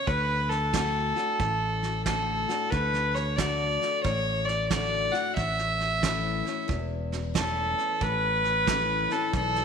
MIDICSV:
0, 0, Header, 1, 5, 480
1, 0, Start_track
1, 0, Key_signature, 2, "major"
1, 0, Tempo, 661521
1, 55, Time_signature, 4, 2, 24, 8
1, 7001, End_track
2, 0, Start_track
2, 0, Title_t, "Fiddle"
2, 0, Program_c, 0, 110
2, 48, Note_on_c, 0, 71, 93
2, 359, Note_on_c, 0, 69, 85
2, 370, Note_off_c, 0, 71, 0
2, 1485, Note_off_c, 0, 69, 0
2, 1489, Note_on_c, 0, 69, 85
2, 1966, Note_on_c, 0, 71, 88
2, 1976, Note_off_c, 0, 69, 0
2, 2282, Note_on_c, 0, 73, 80
2, 2293, Note_off_c, 0, 71, 0
2, 2442, Note_on_c, 0, 74, 83
2, 2452, Note_off_c, 0, 73, 0
2, 2920, Note_off_c, 0, 74, 0
2, 2924, Note_on_c, 0, 73, 87
2, 3231, Note_on_c, 0, 74, 78
2, 3242, Note_off_c, 0, 73, 0
2, 3399, Note_off_c, 0, 74, 0
2, 3403, Note_on_c, 0, 74, 80
2, 3714, Note_on_c, 0, 78, 85
2, 3725, Note_off_c, 0, 74, 0
2, 3880, Note_off_c, 0, 78, 0
2, 3885, Note_on_c, 0, 76, 92
2, 4820, Note_off_c, 0, 76, 0
2, 5341, Note_on_c, 0, 69, 80
2, 5827, Note_on_c, 0, 71, 95
2, 5838, Note_off_c, 0, 69, 0
2, 6619, Note_on_c, 0, 69, 84
2, 6630, Note_off_c, 0, 71, 0
2, 6779, Note_off_c, 0, 69, 0
2, 6788, Note_on_c, 0, 69, 94
2, 7001, Note_off_c, 0, 69, 0
2, 7001, End_track
3, 0, Start_track
3, 0, Title_t, "Steel-string acoustic guitar"
3, 0, Program_c, 1, 25
3, 56, Note_on_c, 1, 50, 63
3, 521, Note_off_c, 1, 50, 0
3, 529, Note_on_c, 1, 50, 58
3, 535, Note_on_c, 1, 57, 61
3, 538, Note_on_c, 1, 62, 60
3, 543, Note_on_c, 1, 66, 65
3, 832, Note_off_c, 1, 50, 0
3, 833, Note_off_c, 1, 66, 0
3, 835, Note_off_c, 1, 57, 0
3, 836, Note_off_c, 1, 62, 0
3, 842, Note_on_c, 1, 66, 58
3, 856, Note_on_c, 1, 62, 45
3, 1005, Note_off_c, 1, 66, 0
3, 1013, Note_off_c, 1, 62, 0
3, 1016, Note_on_c, 1, 45, 69
3, 1493, Note_on_c, 1, 50, 46
3, 1500, Note_on_c, 1, 57, 56
3, 1503, Note_on_c, 1, 62, 53
3, 1506, Note_on_c, 1, 66, 56
3, 1794, Note_off_c, 1, 50, 0
3, 1796, Note_off_c, 1, 66, 0
3, 1797, Note_off_c, 1, 57, 0
3, 1799, Note_off_c, 1, 62, 0
3, 1805, Note_on_c, 1, 66, 52
3, 1818, Note_on_c, 1, 62, 43
3, 1942, Note_off_c, 1, 45, 0
3, 1967, Note_off_c, 1, 66, 0
3, 1973, Note_off_c, 1, 62, 0
3, 1975, Note_on_c, 1, 50, 70
3, 2440, Note_off_c, 1, 50, 0
3, 2449, Note_on_c, 1, 50, 56
3, 2454, Note_on_c, 1, 57, 57
3, 2459, Note_on_c, 1, 62, 58
3, 2464, Note_on_c, 1, 66, 62
3, 2915, Note_off_c, 1, 50, 0
3, 2917, Note_off_c, 1, 57, 0
3, 2920, Note_off_c, 1, 62, 0
3, 2922, Note_off_c, 1, 66, 0
3, 2933, Note_on_c, 1, 45, 80
3, 3408, Note_on_c, 1, 50, 56
3, 3413, Note_on_c, 1, 57, 50
3, 3417, Note_on_c, 1, 62, 58
3, 3421, Note_on_c, 1, 66, 48
3, 3711, Note_off_c, 1, 50, 0
3, 3713, Note_off_c, 1, 57, 0
3, 3715, Note_off_c, 1, 62, 0
3, 3715, Note_off_c, 1, 66, 0
3, 3723, Note_on_c, 1, 66, 63
3, 3739, Note_on_c, 1, 62, 46
3, 3860, Note_off_c, 1, 45, 0
3, 3886, Note_off_c, 1, 66, 0
3, 3890, Note_on_c, 1, 45, 69
3, 3894, Note_off_c, 1, 62, 0
3, 4367, Note_on_c, 1, 52, 55
3, 4373, Note_on_c, 1, 57, 55
3, 4378, Note_on_c, 1, 61, 63
3, 4383, Note_on_c, 1, 64, 70
3, 4670, Note_off_c, 1, 52, 0
3, 4672, Note_off_c, 1, 64, 0
3, 4673, Note_off_c, 1, 57, 0
3, 4676, Note_off_c, 1, 61, 0
3, 4681, Note_on_c, 1, 64, 57
3, 4696, Note_on_c, 1, 61, 51
3, 4818, Note_off_c, 1, 45, 0
3, 4844, Note_off_c, 1, 64, 0
3, 4845, Note_on_c, 1, 40, 75
3, 4852, Note_off_c, 1, 61, 0
3, 5326, Note_on_c, 1, 52, 51
3, 5333, Note_on_c, 1, 57, 50
3, 5337, Note_on_c, 1, 61, 50
3, 5339, Note_on_c, 1, 64, 53
3, 5775, Note_off_c, 1, 40, 0
3, 5792, Note_off_c, 1, 52, 0
3, 5796, Note_off_c, 1, 57, 0
3, 5798, Note_off_c, 1, 61, 0
3, 5799, Note_off_c, 1, 64, 0
3, 5814, Note_on_c, 1, 45, 75
3, 6291, Note_on_c, 1, 52, 59
3, 6294, Note_on_c, 1, 57, 61
3, 6298, Note_on_c, 1, 61, 56
3, 6305, Note_on_c, 1, 64, 65
3, 6591, Note_off_c, 1, 52, 0
3, 6593, Note_off_c, 1, 57, 0
3, 6593, Note_off_c, 1, 64, 0
3, 6595, Note_off_c, 1, 61, 0
3, 6602, Note_on_c, 1, 64, 56
3, 6616, Note_on_c, 1, 61, 45
3, 6739, Note_off_c, 1, 45, 0
3, 6764, Note_off_c, 1, 64, 0
3, 6771, Note_off_c, 1, 61, 0
3, 6772, Note_on_c, 1, 40, 90
3, 7001, Note_off_c, 1, 40, 0
3, 7001, End_track
4, 0, Start_track
4, 0, Title_t, "Fingered electric bass"
4, 0, Program_c, 2, 33
4, 53, Note_on_c, 2, 38, 83
4, 811, Note_off_c, 2, 38, 0
4, 1014, Note_on_c, 2, 33, 87
4, 1772, Note_off_c, 2, 33, 0
4, 1975, Note_on_c, 2, 38, 82
4, 2732, Note_off_c, 2, 38, 0
4, 2937, Note_on_c, 2, 33, 79
4, 3693, Note_off_c, 2, 33, 0
4, 3898, Note_on_c, 2, 33, 83
4, 4653, Note_off_c, 2, 33, 0
4, 4856, Note_on_c, 2, 28, 82
4, 5612, Note_off_c, 2, 28, 0
4, 5814, Note_on_c, 2, 33, 89
4, 6570, Note_off_c, 2, 33, 0
4, 6773, Note_on_c, 2, 35, 78
4, 7001, Note_off_c, 2, 35, 0
4, 7001, End_track
5, 0, Start_track
5, 0, Title_t, "Drums"
5, 53, Note_on_c, 9, 36, 101
5, 54, Note_on_c, 9, 38, 30
5, 126, Note_off_c, 9, 36, 0
5, 127, Note_off_c, 9, 38, 0
5, 367, Note_on_c, 9, 38, 32
5, 440, Note_off_c, 9, 38, 0
5, 534, Note_on_c, 9, 36, 79
5, 534, Note_on_c, 9, 38, 108
5, 534, Note_on_c, 9, 44, 79
5, 606, Note_off_c, 9, 36, 0
5, 607, Note_off_c, 9, 38, 0
5, 607, Note_off_c, 9, 44, 0
5, 846, Note_on_c, 9, 38, 31
5, 918, Note_off_c, 9, 38, 0
5, 1012, Note_on_c, 9, 38, 28
5, 1014, Note_on_c, 9, 36, 104
5, 1085, Note_off_c, 9, 38, 0
5, 1086, Note_off_c, 9, 36, 0
5, 1325, Note_on_c, 9, 38, 32
5, 1397, Note_off_c, 9, 38, 0
5, 1492, Note_on_c, 9, 38, 88
5, 1492, Note_on_c, 9, 44, 73
5, 1494, Note_on_c, 9, 36, 71
5, 1565, Note_off_c, 9, 38, 0
5, 1565, Note_off_c, 9, 44, 0
5, 1567, Note_off_c, 9, 36, 0
5, 1807, Note_on_c, 9, 38, 34
5, 1879, Note_off_c, 9, 38, 0
5, 1974, Note_on_c, 9, 38, 30
5, 1975, Note_on_c, 9, 36, 88
5, 2046, Note_off_c, 9, 38, 0
5, 2048, Note_off_c, 9, 36, 0
5, 2130, Note_on_c, 9, 38, 31
5, 2203, Note_off_c, 9, 38, 0
5, 2288, Note_on_c, 9, 38, 34
5, 2360, Note_off_c, 9, 38, 0
5, 2455, Note_on_c, 9, 38, 103
5, 2455, Note_on_c, 9, 44, 82
5, 2456, Note_on_c, 9, 36, 81
5, 2527, Note_off_c, 9, 38, 0
5, 2527, Note_off_c, 9, 44, 0
5, 2528, Note_off_c, 9, 36, 0
5, 2769, Note_on_c, 9, 38, 31
5, 2841, Note_off_c, 9, 38, 0
5, 2935, Note_on_c, 9, 38, 32
5, 2936, Note_on_c, 9, 36, 105
5, 3008, Note_off_c, 9, 38, 0
5, 3009, Note_off_c, 9, 36, 0
5, 3248, Note_on_c, 9, 38, 30
5, 3321, Note_off_c, 9, 38, 0
5, 3415, Note_on_c, 9, 38, 98
5, 3415, Note_on_c, 9, 44, 84
5, 3416, Note_on_c, 9, 36, 75
5, 3487, Note_off_c, 9, 38, 0
5, 3487, Note_off_c, 9, 44, 0
5, 3488, Note_off_c, 9, 36, 0
5, 3728, Note_on_c, 9, 38, 32
5, 3801, Note_off_c, 9, 38, 0
5, 3896, Note_on_c, 9, 36, 91
5, 3896, Note_on_c, 9, 38, 29
5, 3968, Note_off_c, 9, 38, 0
5, 3969, Note_off_c, 9, 36, 0
5, 4052, Note_on_c, 9, 38, 31
5, 4125, Note_off_c, 9, 38, 0
5, 4209, Note_on_c, 9, 38, 30
5, 4282, Note_off_c, 9, 38, 0
5, 4376, Note_on_c, 9, 36, 86
5, 4376, Note_on_c, 9, 38, 99
5, 4376, Note_on_c, 9, 44, 82
5, 4448, Note_off_c, 9, 36, 0
5, 4449, Note_off_c, 9, 38, 0
5, 4449, Note_off_c, 9, 44, 0
5, 4690, Note_on_c, 9, 38, 33
5, 4763, Note_off_c, 9, 38, 0
5, 4855, Note_on_c, 9, 36, 104
5, 4855, Note_on_c, 9, 38, 29
5, 4927, Note_off_c, 9, 38, 0
5, 4928, Note_off_c, 9, 36, 0
5, 5169, Note_on_c, 9, 38, 31
5, 5241, Note_off_c, 9, 38, 0
5, 5333, Note_on_c, 9, 38, 106
5, 5333, Note_on_c, 9, 44, 74
5, 5334, Note_on_c, 9, 36, 70
5, 5406, Note_off_c, 9, 38, 0
5, 5406, Note_off_c, 9, 44, 0
5, 5407, Note_off_c, 9, 36, 0
5, 5646, Note_on_c, 9, 38, 30
5, 5718, Note_off_c, 9, 38, 0
5, 5811, Note_on_c, 9, 38, 26
5, 5813, Note_on_c, 9, 36, 96
5, 5884, Note_off_c, 9, 38, 0
5, 5886, Note_off_c, 9, 36, 0
5, 6126, Note_on_c, 9, 38, 33
5, 6198, Note_off_c, 9, 38, 0
5, 6294, Note_on_c, 9, 36, 85
5, 6294, Note_on_c, 9, 38, 109
5, 6294, Note_on_c, 9, 44, 89
5, 6366, Note_off_c, 9, 36, 0
5, 6366, Note_off_c, 9, 38, 0
5, 6366, Note_off_c, 9, 44, 0
5, 6606, Note_on_c, 9, 38, 28
5, 6679, Note_off_c, 9, 38, 0
5, 6773, Note_on_c, 9, 36, 97
5, 6774, Note_on_c, 9, 38, 33
5, 6846, Note_off_c, 9, 36, 0
5, 6846, Note_off_c, 9, 38, 0
5, 6932, Note_on_c, 9, 38, 30
5, 7001, Note_off_c, 9, 38, 0
5, 7001, End_track
0, 0, End_of_file